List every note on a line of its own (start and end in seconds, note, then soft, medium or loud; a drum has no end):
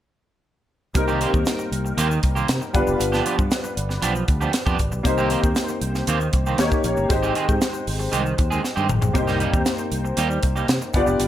0.94 1.25 C2 loud
0.94 2.70 G3 medium
0.94 2.71 A#3 medium
0.94 2.71 C4 medium
0.94 2.71 D#4 medium
0.94 2.72 A#4 medium
0.94 muted clean electric guitar stroke soft
0.94 kick loud
0.94 closed hi-hat medium
0.94 shaker medium
1.08 1.19 D#3 medium
1.08 1.20 A#3 medium
1.08 1.20 C4 medium
1.08 1.21 G4 medium
1.08 shaker soft
1.21 1.37 D#3 medium
1.21 1.33 A#3 medium
1.21 1.33 C4 medium
1.21 1.32 G4 medium
1.21 closed hi-hat medium
1.33 1.44 D#2 loud
1.33 muted clean electric guitar stroke soft
1.33 kick medium
1.33 shaker soft
1.46 muted clean electric guitar stroke soft
1.46 snare loud
1.46 closed hi-hat medium
1.46 shaker medium
1.59 muted clean electric guitar stroke soft
1.59 shaker soft
1.72 1.92 C2 medium
1.72 closed hi-hat medium
1.85 muted clean electric guitar stroke soft
1.85 shaker soft
1.97 2.17 D#2 medium
1.97 2.18 D#3 medium
1.97 2.10 A#3 medium
1.97 2.09 C4 medium
1.97 2.09 G4 loud
1.97 closed hi-hat medium
1.97 shaker medium
2.10 muted clean electric guitar stroke soft
2.10 shaker soft
2.23 2.43 C2 medium
2.23 muted clean electric guitar stroke soft
2.23 kick medium
2.23 closed hi-hat medium
2.35 2.48 D#3 soft
2.35 2.48 A#3 medium
2.35 2.49 C4 medium
2.35 2.49 G4 medium
2.35 shaker soft
2.48 2.59 C3 medium
2.48 muted clean electric guitar stroke soft
2.48 snare loud
2.48 closed hi-hat medium
2.48 shaker medium
2.61 muted clean electric guitar stroke soft
2.61 shaker soft
2.73 2.84 G1 loud
2.73 4.75 G3 medium
2.73 4.75 B3 medium
2.73 4.75 D4 medium
2.73 4.75 F4 medium
2.73 4.76 B4 medium
2.73 kick medium
2.73 closed hi-hat medium
2.73 shaker soft
2.87 2.97 F1 medium
2.87 muted clean electric guitar stroke soft
2.87 shaker soft
3.00 3.20 G1 medium
3.00 muted clean electric guitar stroke soft
3.00 closed hi-hat medium
3.00 shaker medium
3.12 3.24 F3 medium
3.12 3.25 B3 medium
3.12 3.25 D4 medium
3.12 3.26 G4 medium
3.12 snare soft
3.12 shaker soft
3.25 3.42 F3 medium
3.25 3.38 B3 medium
3.25 3.38 D4 medium
3.25 3.37 G4 medium
3.25 closed hi-hat medium
3.38 3.49 G2 loud
3.38 muted clean electric guitar stroke soft
3.38 kick medium
3.38 shaker medium
3.51 muted clean electric guitar stroke soft
3.51 snare loud
3.51 closed hi-hat medium
3.51 shaker medium
3.64 muted clean electric guitar stroke soft
3.64 shaker soft
3.77 3.97 G1 medium
3.77 closed hi-hat medium
3.89 muted clean electric guitar stroke soft
3.89 snare soft
3.89 shaker soft
4.02 4.22 B1 medium
4.02 4.23 F3 medium
4.02 4.15 B3 medium
4.02 4.14 D4 medium
4.02 4.14 G4 medium
4.02 closed hi-hat medium
4.02 shaker medium
4.15 muted clean electric guitar stroke soft
4.15 shaker soft
4.28 4.48 D2 medium
4.28 muted clean electric guitar stroke soft
4.28 kick medium
4.28 closed hi-hat medium
4.41 4.52 F3 soft
4.41 4.53 B3 medium
4.41 4.53 D4 medium
4.41 4.53 G4 medium
4.41 shaker soft
4.53 muted clean electric guitar stroke soft
4.53 snare loud
4.53 closed hi-hat medium
4.53 shaker medium
4.66 4.76 F2 medium
4.66 4.78 F3 medium
4.66 4.79 B3 medium
4.66 4.79 D4 medium
4.66 4.79 G4 medium
4.66 kick medium
4.66 shaker soft
4.79 4.89 G#1 medium
4.79 muted clean electric guitar stroke soft
4.79 kick medium
4.79 closed hi-hat medium
4.79 shaker soft
4.92 5.02 B1 medium
4.92 muted clean electric guitar stroke soft
4.92 shaker soft
5.03 5.35 C2 loud
5.03 6.55 A#3 medium
5.03 6.55 C4 medium
5.03 6.55 D#4 medium
5.03 6.56 G4 medium
5.03 6.56 C5 medium
5.03 muted clean electric guitar stroke soft
5.03 kick loud
5.03 closed hi-hat medium
5.03 shaker medium
5.18 5.29 D#3 medium
5.18 5.30 A#3 medium
5.18 5.30 C4 medium
5.18 5.31 G4 medium
5.18 shaker medium
5.30 5.47 D#3 medium
5.30 5.43 A#3 medium
5.30 5.43 C4 medium
5.30 5.42 G4 medium
5.30 closed hi-hat medium
5.43 5.53 D#2 medium
5.43 muted clean electric guitar stroke soft
5.43 kick medium
5.43 shaker soft
5.55 muted clean electric guitar stroke soft
5.55 snare loud
5.55 closed hi-hat medium
5.55 shaker medium
5.68 muted clean electric guitar stroke soft
5.68 shaker soft
5.81 6.01 C2 medium
5.81 closed hi-hat medium
5.95 muted clean electric guitar stroke soft
5.95 snare soft
5.95 shaker soft
6.07 6.27 D#2 medium
6.07 6.28 D#3 medium
6.07 6.20 A#3 medium
6.07 6.20 C4 medium
6.07 6.20 G4 medium
6.07 closed hi-hat medium
6.07 shaker medium
6.21 muted clean electric guitar stroke soft
6.21 shaker soft
6.33 6.53 C2 medium
6.33 muted clean electric guitar stroke soft
6.33 kick medium
6.33 closed hi-hat medium
6.46 6.58 D#3 medium
6.46 6.58 A#3 medium
6.46 6.59 C4 medium
6.46 6.59 G4 medium
6.46 shaker soft
6.58 6.69 D#2 medium
6.58 7.10 A#3 medium
6.58 7.10 C#4 medium
6.58 7.08 D#4 medium
6.58 7.09 G4 medium
6.58 7.10 C#5 medium
6.58 muted clean electric guitar stroke soft
6.58 snare loud
6.58 closed hi-hat medium
6.58 shaker medium
6.71 muted clean electric guitar stroke soft
6.71 kick medium
6.71 shaker soft
6.84 6.94 A#1 medium
6.84 closed hi-hat medium
6.84 shaker soft
6.97 7.07 G1 medium
6.97 muted clean electric guitar stroke soft
6.97 shaker soft
7.09 7.30 G#1 loud
7.09 9.10 G#3 medium
7.09 9.11 C4 medium
7.09 9.11 D#4 medium
7.09 9.11 G4 medium
7.09 9.12 C5 medium
7.09 muted clean electric guitar stroke soft
7.09 kick loud
7.09 closed hi-hat medium
7.09 shaker medium
7.23 7.34 D#3 medium
7.23 7.34 G#3 medium
7.23 7.35 C4 medium
7.23 7.36 G4 medium
7.23 shaker soft
7.35 7.52 D#3 medium
7.35 7.48 G#3 medium
7.35 7.47 C4 medium
7.35 7.48 G#4 medium
7.35 closed hi-hat medium
7.48 7.58 G#2 medium
7.48 muted clean electric guitar stroke soft
7.48 kick medium
7.48 shaker soft
7.61 muted clean electric guitar stroke soft
7.61 snare loud
7.61 closed hi-hat medium
7.61 shaker medium
7.73 muted clean electric guitar stroke soft
7.73 shaker soft
7.87 8.07 G#1 medium
7.87 open hi-hat medium
7.99 muted clean electric guitar stroke soft
7.99 shaker soft
8.12 8.33 C2 medium
8.12 8.33 D#3 medium
8.12 8.25 G#3 medium
8.12 8.24 C4 medium
8.12 8.24 G4 medium
8.12 closed hi-hat medium
8.12 shaker medium
8.25 muted clean electric guitar stroke soft
8.25 shaker soft
8.38 8.58 D#2 medium
8.38 muted clean electric guitar stroke soft
8.38 kick medium
8.38 closed hi-hat medium
8.50 8.62 D#3 medium
8.50 8.63 G#3 medium
8.50 8.63 C4 medium
8.50 8.64 G#4 medium
8.50 shaker soft
8.63 muted clean electric guitar stroke soft
8.63 snare medium
8.63 shaker medium
8.76 8.87 G2 medium
8.76 8.88 D#3 medium
8.76 8.88 G#3 medium
8.76 8.89 C4 medium
8.76 8.89 G4 medium
8.76 shaker soft
8.89 8.99 G#1 medium
8.89 muted clean electric guitar stroke soft
8.89 mid tom medium
8.89 shaker soft
9.02 9.12 A#1 medium
9.02 muted clean electric guitar stroke soft
9.02 floor tom medium
9.02 shaker soft
9.13 9.45 C2 loud
9.13 10.90 A#3 medium
9.13 10.90 C4 medium
9.13 10.90 D#4 medium
9.13 10.91 G4 medium
9.13 10.91 C5 medium
9.13 muted clean electric guitar stroke soft
9.13 kick loud
9.13 closed hi-hat medium
9.13 shaker medium
9.27 9.39 G3 medium
9.27 9.39 A#3 medium
9.27 9.40 D#4 medium
9.27 9.40 G4 medium
9.27 snare soft
9.27 shaker soft
9.40 9.56 G3 medium
9.40 9.53 A#3 medium
9.40 9.53 D#4 medium
9.40 9.52 G4 medium
9.40 closed hi-hat medium
9.53 9.63 D#2 medium
9.53 muted clean electric guitar stroke soft
9.53 kick medium
9.53 shaker soft
9.66 muted clean electric guitar stroke soft
9.66 snare loud
9.66 closed hi-hat medium
9.66 shaker medium
9.78 muted clean electric guitar stroke soft
9.78 shaker soft
9.92 10.11 C2 medium
9.92 closed hi-hat medium
10.05 muted clean electric guitar stroke soft
10.05 shaker soft
10.17 10.37 D#2 medium
10.17 10.38 G3 medium
10.17 10.30 A#3 medium
10.17 10.30 D#4 medium
10.17 10.29 G4 medium
10.17 closed hi-hat medium
10.17 shaker medium
10.30 muted clean electric guitar stroke soft
10.30 shaker soft
10.43 10.63 C2 medium
10.43 muted clean electric guitar stroke soft
10.43 kick medium
10.43 closed hi-hat medium
10.56 10.68 G3 soft
10.56 10.68 A#3 soft
10.56 10.68 D#4 soft
10.56 10.69 G4 soft
10.56 shaker soft
10.68 10.78 C3 medium
10.68 muted clean electric guitar stroke soft
10.68 snare loud
10.68 closed hi-hat medium
10.68 shaker medium
10.81 muted clean electric guitar stroke soft
10.81 shaker soft
10.93 11.04 G1 medium
10.93 11.28 B3 medium
10.93 11.28 D4 medium
10.93 11.28 F4 medium
10.93 11.28 G4 medium
10.93 11.28 D5 medium
10.93 kick medium
10.93 closed hi-hat medium
10.93 shaker soft
11.07 11.17 F1 medium
11.07 muted clean electric guitar stroke soft
11.07 shaker soft
11.20 11.28 G1 loud
11.20 muted clean electric guitar stroke soft
11.20 closed hi-hat medium
11.20 shaker medium